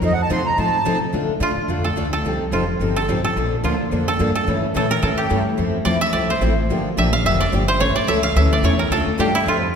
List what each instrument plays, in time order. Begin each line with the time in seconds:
0.02 upright bass F2, steel-string acoustic guitar F3 C4 D#4 A4, accordion D#5
0.13 accordion F#5
0.22 accordion A5
0.30 upright bass C3, steel-string acoustic guitar F3 C4 D#4 A4, accordion C6
0.46 accordion A#5
0.58 upright bass A2, steel-string acoustic guitar F3 C4 D#4 A4, accordion A5
0.86 upright bass C3, steel-string acoustic guitar F3 C4 D#4 A4
1.13 upright bass F2, steel-string acoustic guitar D3 A3 D4 F4 A4
1.28 muted upright bass stroke
1.40 upright bass A2, steel-string acoustic guitar D3 A3 D4 F4 A4, koto F4
1.56 muted upright bass stroke
1.68 upright bass F2, steel-string acoustic guitar D3 A3 D4 F4 A4
1.84 koto A4
1.96 upright bass D2, steel-string acoustic guitar D3 A3 D4 F4 A4
2.13 koto A4
2.24 upright bass C2, steel-string acoustic guitar C3 F3 C4 D#4 A4
2.51 upright bass F1, steel-string acoustic guitar C3 F3 C4 D#4 A4, koto F4
2.80 upright bass G1, steel-string acoustic guitar C3 F3 C4 D#4 A4
2.96 koto A4
3.08 upright bass A1, steel-string acoustic guitar C3 F3 C4 D#4 A4
3.24 koto A4, muted upright bass stroke
3.36 upright bass A#1, steel-string acoustic guitar D3 F3 A#3 D4 A4
3.63 upright bass D2, steel-string acoustic guitar D3 F3 A#3 D4 A4, koto F4
3.92 upright bass F2, steel-string acoustic guitar D3 F3 A#3 D4 A4
4.08 koto A4
4.19 upright bass G2, steel-string acoustic guitar D3 F3 A#3 D4 A4
4.35 koto A4
4.47 upright bass A2, steel-string acoustic guitar C#3 E3 A3 C#4 E4 A4
4.74 upright bass A#2, steel-string acoustic guitar C#3 E3 A3 C#4 E4 A4, koto A4
4.91 koto A#4
5.02 upright bass A2, steel-string acoustic guitar C#3 E3 A3 C#4 E4 A4, koto A4
5.18 koto G4
5.30 upright bass G2, steel-string acoustic guitar C#3 E3 A3 C#4 E4 A4
5.58 upright bass F2, steel-string acoustic guitar F3 A3 C4 E4 A4
5.85 upright bass E2, steel-string acoustic guitar F3 A3 C4 E4 A4, koto D5
6.01 koto E5
6.13 upright bass C2, steel-string acoustic guitar F3 A3 C4 E4 A4, koto D5
6.30 koto C5
6.41 upright bass A1, steel-string acoustic guitar F3 A3 C4 E4 A4
6.69 upright bass G1, steel-string acoustic guitar D3 F3 A#3 D4 G4
6.97 upright bass A#1, steel-string acoustic guitar D3 F3 A#3 D4 G4, koto E5
7.13 koto F5
7.24 upright bass F1, steel-string acoustic guitar D3 F3 A#3 D4 G4, koto E5
7.40 koto D5
7.52 upright bass G1, steel-string acoustic guitar D3 F3 A#3 D4 G4
7.68 koto C5
7.79 upright bass A1, steel-string acoustic guitar C#3 E3 A3 C#4 E4 A4, koto C#5
7.96 koto D5, muted upright bass stroke
8.07 upright bass C#2, steel-string acoustic guitar C#3 E3 A3 C#4 E4 A4, koto E5
8.23 koto F5
8.35 upright bass D2, steel-string acoustic guitar C#3 E3 A3 C#4 E4 A4, koto E5
8.53 koto D5
8.63 upright bass E2, steel-string acoustic guitar C#3 E3 A3 C#4 E4 A4, koto C#5
8.79 koto A#4
8.90 upright bass D2, steel-string acoustic guitar D3 A3 D4 F4 A4, koto A4
9.06 muted upright bass stroke
9.19 upright bass G2, steel-string acoustic guitar D3 A3 D4 F4 A4, koto G4
9.35 koto E4
9.46 upright bass F2, steel-string acoustic guitar F3 C4 D#4 A4, koto F4